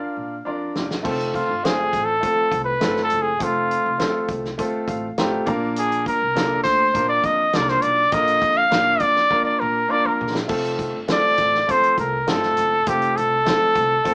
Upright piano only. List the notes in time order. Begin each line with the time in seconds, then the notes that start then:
Already playing: D4 F4 A#4 D5
0.45 D4 F4 A#4 D5
1.03 A3 C4 F4 A4
1.63 A3 C4 F4 C5
2.21 A3 C4 F4 A4
2.80 A3 C4 F4 A4
3.39 A3 C4 F4 A4
3.98 A3 C4 F4 A4
4.58 A3 C4 F4 A4
4.87 F5
5.18 A3 C4 F4 G4 A#5
5.46 A#3 D4 F4 A#4
6.35 A#3 D4 F4 A4
6.94 A#3 D4 F4 A#4
7.53 A#3 D4 F4 A4
7.62 A#4
8.12 D3 A#3 F4 A#4
8.70 A#3 D4 F4 A#4
9.30 A#3 D4 F4 A#4
9.88 A#3 D4 F4 A#4
10.48 A3 C4 F4 A4
11.08 A3 C4 F4 A4
11.67 A3 C4 F4 A4
12.27 A3 C4 F4 G#4
12.35 A4
12.87 A3 C4 F4 A4
13.45 A3 C4 F4 A4
14.04 A3 C4 F4 A4